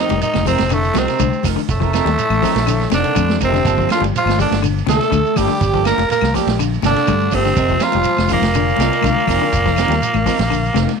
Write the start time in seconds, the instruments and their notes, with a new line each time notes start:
Already playing: clean electric guitar F3 C4 D#4
0.00 trombone section D#3, tenor saxophone D#4, clean electric guitar A#4
0.09 fretless electric bass F1, clean electric guitar G3, ride bell, high conga, shekere
0.21 trombone section D#3, tenor saxophone D#4, ride bell, high conga, shekere
0.34 fretless electric bass F1, snare, high conga, claves, shekere
0.45 trombone section C3, clean electric guitar F3 C4 D#4 A#4, tenor saxophone C4, kick, open hi-hat, low conga, shekere
0.58 fretless electric bass F1, snare, ride bell, high conga, shekere
0.69 trombone section A2, clean electric guitar D3, ride bell, high conga, claves, shekere
0.74 tenor saxophone A3
0.84 shekere
0.94 fretless electric bass C2, clean electric guitar C3 F3 C4 D#4 A#4, trombone section C3, snare, ride bell, high conga, shekere
0.98 tenor saxophone C4
1.08 clean electric guitar C4 D#4 A#4, snare, ride bell, shekere
1.19 fretless electric bass C2, clean electric guitar D3, kick, ride bell, high conga, claves, shekere
1.33 shekere
1.43 fretless electric bass F1, clean electric guitar F3 D#4 A#4, muted clean electric guitar stroke, kick, snare, open hi-hat, high conga, low conga, claves, shekere
1.56 clean electric guitar D3, shekere
1.69 fretless electric bass F1, trombone section A2, tenor saxophone A3, kick, ride bell, shekere
1.80 clean electric guitar F3 C4 D#4 A#4, kick, shekere
1.93 clean electric guitar F3 C4 D#4 A#4, snare, ride bell, claves, shekere
2.05 fretless electric bass D#2, clean electric guitar G3, snare, ride bell, high conga, shekere
2.18 ride bell, high conga, shekere
2.30 fretless electric bass A1, high conga, claves, shekere
2.42 clean electric guitar F3 C4 D#4 A#4, kick, open hi-hat, low conga, shekere
2.55 fretless electric bass A#1, snare, ride bell, shekere
2.67 clean electric guitar D3, ride bell, high conga, claves, shekere
2.81 snare, shekere
2.90 fretless electric bass F1, clean electric guitar C3 F3 C4 D#4, tenor saxophone D4, muted clean electric guitar stroke, snare, ride bell, high conga, shekere
2.94 trombone section D3, trombone D3
3.04 clean electric guitar C4 D#4 A#4, ride bell, shekere
3.15 fretless electric bass F2, clean electric guitar D3, kick, ride bell, high conga, claves, shekere
3.29 snare, high conga, shekere
3.41 fretless electric bass F1, clean electric guitar F3 C4 D#4 A#4, tenor saxophone C4, kick, ride bell, low conga, claves, shekere
3.46 trombone C3, trombone section C3
3.53 clean electric guitar D3, snare, low conga, shekere
3.65 fretless electric bass G1, clean electric guitar F3 A#3 D4 A4, kick, snare, ride bell, high conga, shekere
3.78 clean electric guitar F3 A#3 D4 A4, kick, shekere
3.89 clean electric guitar A#3 D4 A4, tenor saxophone F4, snare, ride bell, low conga, claves, shekere
3.93 trombone F3, trombone section F3
4.00 fretless electric bass G1, clean electric guitar G3, ride bell, high conga
4.05 shekere
4.13 ride bell, high conga, shekere
4.17 trombone F3, trombone section F3, tenor saxophone F4
4.25 fretless electric bass G1, snare, high conga, claves, shekere
4.39 trombone D3, trombone section D3, clean electric guitar F3 G3 A#3 D4 A4, tenor saxophone D4, kick, open hi-hat, low conga, shekere
4.51 fretless electric bass G1, snare, ride bell, high conga, shekere
4.62 clean electric guitar D3, ride bell, high conga, claves, shekere
4.78 shekere
4.87 fretless electric bass D2, clean electric guitar C3 F3 A#3 D4 A4, trombone A3, trombone section A3, tenor saxophone A4, snare, ride bell, high conga, shekere
5.01 clean electric guitar A#3, snare, ride bell, shekere
5.11 fretless electric bass D2, clean electric guitar D3, kick, ride bell, high conga, claves, shekere
5.26 shekere
5.36 fretless electric bass G1, clean electric guitar F3 A#3 D4 A4, trombone section G3, trombone G3, tenor saxophone G4, kick, open hi-hat, high conga, low conga, claves, shekere
5.48 clean electric guitar D3, shekere
5.61 fretless electric bass G1, kick, ride bell, high conga, shekere
5.74 clean electric guitar F3 A#3 D4 A4, kick, shekere
5.84 clean electric guitar F3 A#3 D4, trombone section A#3, trombone A#3, tenor saxophone A#4, muted clean electric guitar stroke, snare, ride bell, claves, shekere
5.98 fretless electric bass F1, muted clean electric guitar stroke, snare, ride bell, high conga, shekere
6.08 trombone section A#3, trombone A#3, tenor saxophone A#4, muted fretless electric bass stroke, snare, ride bell, high conga, shekere
6.21 fretless electric bass C2, snare, high conga, claves, shekere
6.34 clean electric guitar F3 A#3 A4, trombone section G3, trombone G3, tenor saxophone G4, muted clean electric guitar stroke, kick, snare, open hi-hat, low conga, shekere
6.47 fretless electric bass A#1, snare, ride bell, high conga, shekere
6.58 clean electric guitar D3, ride bell, high conga, claves, shekere
6.74 shekere
6.82 fretless electric bass G1, clean electric guitar C3 F3 A#3 D4 A4, tenor saxophone D4, snare, ride bell, high conga, shekere
6.87 trombone D3, trombone section D3
6.96 clean electric guitar A#3 D4 A4, snare, ride bell, shekere
7.07 fretless electric bass G2, clean electric guitar D3, kick, ride bell, high conga, claves, shekere
7.20 shekere
7.31 fretless electric bass G1, trombone C3, trombone section C3, clean electric guitar F3 A#3 D4 A4, tenor saxophone C4, kick, open hi-hat, low conga, claves, shekere
7.45 clean electric guitar D3, snare, shekere
7.56 fretless electric bass F1, clean electric guitar C4 D#4 A#4, kick, ride bell, high conga, shekere
7.69 clean electric guitar F3, kick, shekere
7.80 trombone section F3, clean electric guitar C4 D#4, tenor saxophone F4, snare, ride bell, claves, shekere
7.84 trombone F3, clean electric guitar A#4
7.92 fretless electric bass F1, clean electric guitar G3, ride bell, high conga, shekere
8.03 ride bell, high conga, shekere
8.17 fretless electric bass F1, snare, high conga, claves, shekere
8.27 trombone section A#2, clean electric guitar C4, kick, snare, open hi-hat, low conga, shekere
8.32 trombone A#2, clean electric guitar F3 D#4 A#4, tenor saxophone A#3
8.41 fretless electric bass F1, snare, ride bell, high conga, shekere
8.52 clean electric guitar D3, ride bell, high conga, claves, shekere
8.69 shekere
8.76 fretless electric bass C2, clean electric guitar C4, snare, ride bell, high conga
8.81 clean electric guitar C3 D#4 A#4, shekere
8.93 clean electric guitar D#4 A#4, ride bell, shekere
9.02 fretless electric bass C2, clean electric guitar D3, kick, snare, ride bell, high conga, claves, shekere
9.19 shekere
9.27 fretless electric bass F1, clean electric guitar C4 D#4 A#4, kick, open hi-hat, low conga, claves, shekere
9.42 clean electric guitar D3, shekere
9.51 fretless electric bass F1, kick, ride bell, high conga, shekere
9.65 clean electric guitar F3 D#4 A#4, kick, snare, shekere
9.76 clean electric guitar C4 D#4 A#4, snare, ride bell, low conga, claves, shekere
9.88 fretless electric bass D#2, clean electric guitar G3, ride bell, high conga, shekere
9.92 snare
10.03 ride bell, shekere
10.14 fretless electric bass A1, high conga, claves, shekere
10.26 clean electric guitar F3 C4 D#4 A#4, kick, snare, open hi-hat, low conga, shekere
10.39 fretless electric bass A#1, snare, ride bell, shekere
10.50 clean electric guitar D3, ride bell, high conga, claves, shekere
10.65 shekere
10.74 fretless electric bass F1, clean electric guitar C3 C4 D#4 A#4, snare, ride bell, high conga, shekere
10.89 snare, ride bell, high conga, shekere